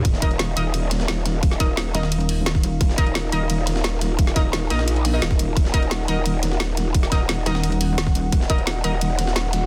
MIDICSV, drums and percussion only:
0, 0, Header, 1, 2, 480
1, 0, Start_track
1, 0, Key_signature, -6, "minor"
1, 0, Tempo, 344828
1, 68, Time_signature, 4, 2, 24, 8
1, 13451, End_track
2, 0, Start_track
2, 0, Title_t, "Drums"
2, 68, Note_on_c, 9, 36, 124
2, 68, Note_on_c, 9, 42, 83
2, 69, Note_on_c, 9, 51, 83
2, 189, Note_on_c, 9, 38, 39
2, 207, Note_off_c, 9, 36, 0
2, 207, Note_off_c, 9, 42, 0
2, 208, Note_off_c, 9, 51, 0
2, 307, Note_on_c, 9, 42, 95
2, 308, Note_on_c, 9, 36, 106
2, 309, Note_on_c, 9, 51, 67
2, 329, Note_off_c, 9, 38, 0
2, 429, Note_off_c, 9, 51, 0
2, 429, Note_on_c, 9, 51, 42
2, 447, Note_off_c, 9, 36, 0
2, 447, Note_off_c, 9, 42, 0
2, 547, Note_on_c, 9, 38, 115
2, 547, Note_on_c, 9, 42, 80
2, 549, Note_off_c, 9, 38, 0
2, 549, Note_off_c, 9, 51, 0
2, 549, Note_on_c, 9, 38, 110
2, 549, Note_on_c, 9, 51, 89
2, 687, Note_off_c, 9, 42, 0
2, 688, Note_off_c, 9, 38, 0
2, 688, Note_off_c, 9, 51, 0
2, 788, Note_on_c, 9, 51, 66
2, 789, Note_on_c, 9, 42, 94
2, 927, Note_off_c, 9, 51, 0
2, 928, Note_off_c, 9, 42, 0
2, 1028, Note_on_c, 9, 42, 84
2, 1028, Note_on_c, 9, 51, 87
2, 1167, Note_off_c, 9, 51, 0
2, 1168, Note_off_c, 9, 42, 0
2, 1268, Note_on_c, 9, 42, 91
2, 1269, Note_on_c, 9, 38, 37
2, 1269, Note_on_c, 9, 51, 69
2, 1388, Note_off_c, 9, 38, 0
2, 1388, Note_on_c, 9, 38, 41
2, 1407, Note_off_c, 9, 42, 0
2, 1408, Note_off_c, 9, 51, 0
2, 1508, Note_off_c, 9, 38, 0
2, 1508, Note_on_c, 9, 38, 113
2, 1508, Note_on_c, 9, 42, 85
2, 1508, Note_on_c, 9, 51, 86
2, 1647, Note_off_c, 9, 42, 0
2, 1648, Note_off_c, 9, 38, 0
2, 1648, Note_off_c, 9, 51, 0
2, 1748, Note_on_c, 9, 42, 87
2, 1749, Note_on_c, 9, 38, 37
2, 1749, Note_on_c, 9, 51, 70
2, 1887, Note_off_c, 9, 42, 0
2, 1888, Note_off_c, 9, 38, 0
2, 1888, Note_off_c, 9, 51, 0
2, 1988, Note_on_c, 9, 36, 125
2, 1988, Note_on_c, 9, 42, 79
2, 1989, Note_on_c, 9, 51, 86
2, 2108, Note_on_c, 9, 38, 37
2, 2127, Note_off_c, 9, 36, 0
2, 2127, Note_off_c, 9, 42, 0
2, 2128, Note_off_c, 9, 51, 0
2, 2228, Note_on_c, 9, 36, 113
2, 2228, Note_on_c, 9, 42, 88
2, 2229, Note_off_c, 9, 38, 0
2, 2229, Note_on_c, 9, 38, 43
2, 2229, Note_on_c, 9, 51, 69
2, 2367, Note_off_c, 9, 36, 0
2, 2367, Note_off_c, 9, 42, 0
2, 2368, Note_off_c, 9, 38, 0
2, 2368, Note_off_c, 9, 51, 0
2, 2468, Note_on_c, 9, 38, 117
2, 2468, Note_on_c, 9, 42, 78
2, 2468, Note_on_c, 9, 51, 87
2, 2607, Note_off_c, 9, 42, 0
2, 2608, Note_off_c, 9, 38, 0
2, 2608, Note_off_c, 9, 51, 0
2, 2708, Note_on_c, 9, 42, 89
2, 2709, Note_on_c, 9, 38, 45
2, 2709, Note_on_c, 9, 51, 67
2, 2829, Note_off_c, 9, 38, 0
2, 2829, Note_on_c, 9, 38, 60
2, 2847, Note_off_c, 9, 42, 0
2, 2848, Note_off_c, 9, 51, 0
2, 2948, Note_on_c, 9, 42, 82
2, 2949, Note_on_c, 9, 51, 87
2, 2968, Note_off_c, 9, 38, 0
2, 3068, Note_off_c, 9, 51, 0
2, 3068, Note_on_c, 9, 51, 43
2, 3087, Note_off_c, 9, 42, 0
2, 3187, Note_on_c, 9, 42, 92
2, 3188, Note_on_c, 9, 46, 82
2, 3207, Note_off_c, 9, 51, 0
2, 3327, Note_off_c, 9, 42, 0
2, 3327, Note_off_c, 9, 46, 0
2, 3428, Note_on_c, 9, 38, 111
2, 3428, Note_on_c, 9, 42, 82
2, 3428, Note_on_c, 9, 51, 86
2, 3548, Note_off_c, 9, 38, 0
2, 3548, Note_on_c, 9, 36, 118
2, 3548, Note_on_c, 9, 38, 41
2, 3567, Note_off_c, 9, 42, 0
2, 3568, Note_off_c, 9, 51, 0
2, 3667, Note_on_c, 9, 42, 88
2, 3668, Note_on_c, 9, 51, 70
2, 3687, Note_off_c, 9, 36, 0
2, 3688, Note_off_c, 9, 38, 0
2, 3806, Note_off_c, 9, 42, 0
2, 3808, Note_off_c, 9, 51, 0
2, 3908, Note_on_c, 9, 36, 123
2, 3908, Note_on_c, 9, 42, 78
2, 3908, Note_on_c, 9, 51, 88
2, 4029, Note_on_c, 9, 38, 39
2, 4047, Note_off_c, 9, 36, 0
2, 4047, Note_off_c, 9, 42, 0
2, 4048, Note_off_c, 9, 51, 0
2, 4147, Note_on_c, 9, 42, 87
2, 4148, Note_on_c, 9, 36, 113
2, 4149, Note_on_c, 9, 51, 67
2, 4168, Note_off_c, 9, 38, 0
2, 4268, Note_off_c, 9, 51, 0
2, 4268, Note_on_c, 9, 51, 43
2, 4287, Note_off_c, 9, 36, 0
2, 4287, Note_off_c, 9, 42, 0
2, 4388, Note_off_c, 9, 51, 0
2, 4388, Note_on_c, 9, 38, 117
2, 4388, Note_on_c, 9, 42, 75
2, 4388, Note_on_c, 9, 51, 88
2, 4527, Note_off_c, 9, 38, 0
2, 4527, Note_off_c, 9, 42, 0
2, 4527, Note_off_c, 9, 51, 0
2, 4627, Note_on_c, 9, 42, 85
2, 4628, Note_on_c, 9, 51, 67
2, 4766, Note_off_c, 9, 42, 0
2, 4767, Note_off_c, 9, 51, 0
2, 4867, Note_on_c, 9, 42, 77
2, 4868, Note_on_c, 9, 51, 89
2, 5006, Note_off_c, 9, 42, 0
2, 5008, Note_off_c, 9, 51, 0
2, 5107, Note_on_c, 9, 42, 86
2, 5110, Note_on_c, 9, 38, 38
2, 5110, Note_on_c, 9, 51, 70
2, 5229, Note_off_c, 9, 38, 0
2, 5229, Note_on_c, 9, 38, 42
2, 5246, Note_off_c, 9, 42, 0
2, 5249, Note_off_c, 9, 51, 0
2, 5348, Note_off_c, 9, 38, 0
2, 5348, Note_on_c, 9, 38, 125
2, 5348, Note_on_c, 9, 42, 78
2, 5349, Note_off_c, 9, 38, 0
2, 5349, Note_on_c, 9, 38, 111
2, 5349, Note_on_c, 9, 51, 89
2, 5487, Note_off_c, 9, 42, 0
2, 5489, Note_off_c, 9, 38, 0
2, 5489, Note_off_c, 9, 51, 0
2, 5588, Note_on_c, 9, 42, 86
2, 5590, Note_on_c, 9, 38, 38
2, 5590, Note_on_c, 9, 51, 71
2, 5727, Note_off_c, 9, 42, 0
2, 5729, Note_off_c, 9, 38, 0
2, 5729, Note_off_c, 9, 51, 0
2, 5828, Note_on_c, 9, 36, 126
2, 5828, Note_on_c, 9, 42, 74
2, 5830, Note_on_c, 9, 51, 87
2, 5948, Note_on_c, 9, 38, 36
2, 5967, Note_off_c, 9, 36, 0
2, 5967, Note_off_c, 9, 42, 0
2, 5969, Note_off_c, 9, 51, 0
2, 6068, Note_on_c, 9, 36, 116
2, 6068, Note_on_c, 9, 42, 82
2, 6069, Note_off_c, 9, 38, 0
2, 6069, Note_on_c, 9, 38, 44
2, 6069, Note_on_c, 9, 51, 67
2, 6207, Note_off_c, 9, 36, 0
2, 6208, Note_off_c, 9, 38, 0
2, 6208, Note_off_c, 9, 42, 0
2, 6208, Note_off_c, 9, 51, 0
2, 6308, Note_on_c, 9, 38, 120
2, 6308, Note_on_c, 9, 42, 73
2, 6309, Note_off_c, 9, 38, 0
2, 6309, Note_on_c, 9, 38, 119
2, 6309, Note_on_c, 9, 51, 87
2, 6447, Note_off_c, 9, 42, 0
2, 6448, Note_off_c, 9, 38, 0
2, 6448, Note_off_c, 9, 51, 0
2, 6548, Note_on_c, 9, 42, 86
2, 6549, Note_on_c, 9, 38, 45
2, 6549, Note_on_c, 9, 51, 68
2, 6668, Note_off_c, 9, 38, 0
2, 6668, Note_on_c, 9, 38, 57
2, 6687, Note_off_c, 9, 42, 0
2, 6688, Note_off_c, 9, 51, 0
2, 6788, Note_on_c, 9, 42, 76
2, 6788, Note_on_c, 9, 51, 87
2, 6807, Note_off_c, 9, 38, 0
2, 6908, Note_off_c, 9, 51, 0
2, 6908, Note_on_c, 9, 51, 41
2, 6928, Note_off_c, 9, 42, 0
2, 7028, Note_on_c, 9, 42, 89
2, 7028, Note_on_c, 9, 46, 80
2, 7047, Note_off_c, 9, 51, 0
2, 7167, Note_off_c, 9, 42, 0
2, 7167, Note_off_c, 9, 46, 0
2, 7267, Note_on_c, 9, 38, 114
2, 7267, Note_on_c, 9, 51, 89
2, 7268, Note_off_c, 9, 38, 0
2, 7268, Note_on_c, 9, 38, 127
2, 7268, Note_on_c, 9, 42, 79
2, 7387, Note_off_c, 9, 38, 0
2, 7387, Note_on_c, 9, 38, 40
2, 7388, Note_on_c, 9, 36, 117
2, 7406, Note_off_c, 9, 51, 0
2, 7407, Note_off_c, 9, 42, 0
2, 7507, Note_on_c, 9, 42, 83
2, 7508, Note_on_c, 9, 51, 71
2, 7526, Note_off_c, 9, 38, 0
2, 7527, Note_off_c, 9, 36, 0
2, 7647, Note_off_c, 9, 42, 0
2, 7647, Note_off_c, 9, 51, 0
2, 7747, Note_on_c, 9, 36, 121
2, 7747, Note_on_c, 9, 51, 88
2, 7748, Note_on_c, 9, 42, 73
2, 7867, Note_on_c, 9, 38, 41
2, 7887, Note_off_c, 9, 36, 0
2, 7887, Note_off_c, 9, 42, 0
2, 7887, Note_off_c, 9, 51, 0
2, 7987, Note_on_c, 9, 36, 110
2, 7987, Note_on_c, 9, 42, 87
2, 7987, Note_on_c, 9, 51, 69
2, 8006, Note_off_c, 9, 38, 0
2, 8108, Note_off_c, 9, 51, 0
2, 8108, Note_on_c, 9, 51, 43
2, 8126, Note_off_c, 9, 36, 0
2, 8127, Note_off_c, 9, 42, 0
2, 8228, Note_off_c, 9, 51, 0
2, 8228, Note_on_c, 9, 38, 112
2, 8228, Note_on_c, 9, 42, 75
2, 8228, Note_on_c, 9, 51, 88
2, 8367, Note_off_c, 9, 38, 0
2, 8367, Note_off_c, 9, 42, 0
2, 8367, Note_off_c, 9, 51, 0
2, 8467, Note_on_c, 9, 42, 88
2, 8468, Note_on_c, 9, 51, 70
2, 8606, Note_off_c, 9, 42, 0
2, 8607, Note_off_c, 9, 51, 0
2, 8708, Note_on_c, 9, 42, 74
2, 8708, Note_on_c, 9, 51, 87
2, 8847, Note_off_c, 9, 42, 0
2, 8847, Note_off_c, 9, 51, 0
2, 8948, Note_on_c, 9, 38, 38
2, 8948, Note_on_c, 9, 42, 84
2, 8948, Note_on_c, 9, 51, 68
2, 9068, Note_off_c, 9, 38, 0
2, 9068, Note_on_c, 9, 38, 42
2, 9087, Note_off_c, 9, 42, 0
2, 9087, Note_off_c, 9, 51, 0
2, 9187, Note_off_c, 9, 38, 0
2, 9187, Note_on_c, 9, 38, 125
2, 9187, Note_on_c, 9, 42, 76
2, 9187, Note_on_c, 9, 51, 92
2, 9327, Note_off_c, 9, 38, 0
2, 9327, Note_off_c, 9, 42, 0
2, 9327, Note_off_c, 9, 51, 0
2, 9427, Note_on_c, 9, 42, 82
2, 9428, Note_on_c, 9, 38, 38
2, 9428, Note_on_c, 9, 51, 71
2, 9566, Note_off_c, 9, 42, 0
2, 9567, Note_off_c, 9, 38, 0
2, 9567, Note_off_c, 9, 51, 0
2, 9667, Note_on_c, 9, 36, 116
2, 9667, Note_on_c, 9, 42, 76
2, 9669, Note_on_c, 9, 51, 86
2, 9787, Note_on_c, 9, 38, 36
2, 9806, Note_off_c, 9, 36, 0
2, 9806, Note_off_c, 9, 42, 0
2, 9808, Note_off_c, 9, 51, 0
2, 9907, Note_on_c, 9, 36, 100
2, 9907, Note_on_c, 9, 42, 86
2, 9909, Note_off_c, 9, 38, 0
2, 9909, Note_on_c, 9, 38, 44
2, 9909, Note_on_c, 9, 51, 71
2, 10046, Note_off_c, 9, 36, 0
2, 10046, Note_off_c, 9, 42, 0
2, 10048, Note_off_c, 9, 38, 0
2, 10048, Note_off_c, 9, 51, 0
2, 10147, Note_on_c, 9, 38, 116
2, 10147, Note_on_c, 9, 42, 78
2, 10148, Note_off_c, 9, 38, 0
2, 10148, Note_on_c, 9, 38, 116
2, 10148, Note_on_c, 9, 51, 87
2, 10286, Note_off_c, 9, 42, 0
2, 10287, Note_off_c, 9, 38, 0
2, 10287, Note_off_c, 9, 51, 0
2, 10387, Note_on_c, 9, 42, 88
2, 10388, Note_on_c, 9, 38, 43
2, 10388, Note_on_c, 9, 51, 70
2, 10508, Note_off_c, 9, 38, 0
2, 10508, Note_on_c, 9, 38, 61
2, 10526, Note_off_c, 9, 42, 0
2, 10528, Note_off_c, 9, 51, 0
2, 10627, Note_on_c, 9, 51, 87
2, 10628, Note_on_c, 9, 42, 79
2, 10647, Note_off_c, 9, 38, 0
2, 10747, Note_off_c, 9, 51, 0
2, 10747, Note_on_c, 9, 51, 45
2, 10767, Note_off_c, 9, 42, 0
2, 10866, Note_on_c, 9, 46, 83
2, 10867, Note_on_c, 9, 42, 90
2, 10886, Note_off_c, 9, 51, 0
2, 11006, Note_off_c, 9, 46, 0
2, 11007, Note_off_c, 9, 42, 0
2, 11107, Note_on_c, 9, 38, 116
2, 11107, Note_on_c, 9, 51, 91
2, 11108, Note_off_c, 9, 38, 0
2, 11108, Note_on_c, 9, 38, 119
2, 11108, Note_on_c, 9, 42, 82
2, 11227, Note_on_c, 9, 36, 108
2, 11228, Note_off_c, 9, 38, 0
2, 11228, Note_on_c, 9, 38, 40
2, 11246, Note_off_c, 9, 51, 0
2, 11247, Note_off_c, 9, 42, 0
2, 11348, Note_on_c, 9, 42, 86
2, 11348, Note_on_c, 9, 51, 71
2, 11367, Note_off_c, 9, 36, 0
2, 11368, Note_off_c, 9, 38, 0
2, 11487, Note_off_c, 9, 42, 0
2, 11487, Note_off_c, 9, 51, 0
2, 11587, Note_on_c, 9, 36, 112
2, 11588, Note_on_c, 9, 42, 79
2, 11588, Note_on_c, 9, 51, 88
2, 11709, Note_on_c, 9, 38, 40
2, 11726, Note_off_c, 9, 36, 0
2, 11727, Note_off_c, 9, 42, 0
2, 11727, Note_off_c, 9, 51, 0
2, 11827, Note_on_c, 9, 36, 104
2, 11827, Note_on_c, 9, 42, 96
2, 11829, Note_on_c, 9, 51, 69
2, 11848, Note_off_c, 9, 38, 0
2, 11948, Note_off_c, 9, 51, 0
2, 11948, Note_on_c, 9, 51, 42
2, 11966, Note_off_c, 9, 36, 0
2, 11966, Note_off_c, 9, 42, 0
2, 12067, Note_on_c, 9, 38, 111
2, 12067, Note_on_c, 9, 42, 83
2, 12068, Note_off_c, 9, 38, 0
2, 12068, Note_off_c, 9, 51, 0
2, 12068, Note_on_c, 9, 38, 112
2, 12068, Note_on_c, 9, 51, 90
2, 12207, Note_off_c, 9, 38, 0
2, 12207, Note_off_c, 9, 42, 0
2, 12207, Note_off_c, 9, 51, 0
2, 12307, Note_on_c, 9, 42, 91
2, 12308, Note_on_c, 9, 51, 69
2, 12446, Note_off_c, 9, 42, 0
2, 12447, Note_off_c, 9, 51, 0
2, 12547, Note_on_c, 9, 42, 83
2, 12548, Note_on_c, 9, 51, 87
2, 12686, Note_off_c, 9, 42, 0
2, 12687, Note_off_c, 9, 51, 0
2, 12787, Note_on_c, 9, 42, 96
2, 12788, Note_on_c, 9, 38, 39
2, 12788, Note_on_c, 9, 51, 68
2, 12908, Note_off_c, 9, 38, 0
2, 12908, Note_on_c, 9, 38, 42
2, 12926, Note_off_c, 9, 42, 0
2, 12927, Note_off_c, 9, 51, 0
2, 13027, Note_off_c, 9, 38, 0
2, 13027, Note_on_c, 9, 38, 116
2, 13027, Note_on_c, 9, 42, 84
2, 13028, Note_off_c, 9, 38, 0
2, 13028, Note_on_c, 9, 38, 117
2, 13028, Note_on_c, 9, 51, 89
2, 13166, Note_off_c, 9, 42, 0
2, 13168, Note_off_c, 9, 38, 0
2, 13168, Note_off_c, 9, 51, 0
2, 13267, Note_on_c, 9, 42, 91
2, 13268, Note_on_c, 9, 38, 38
2, 13268, Note_on_c, 9, 51, 73
2, 13406, Note_off_c, 9, 42, 0
2, 13407, Note_off_c, 9, 38, 0
2, 13407, Note_off_c, 9, 51, 0
2, 13451, End_track
0, 0, End_of_file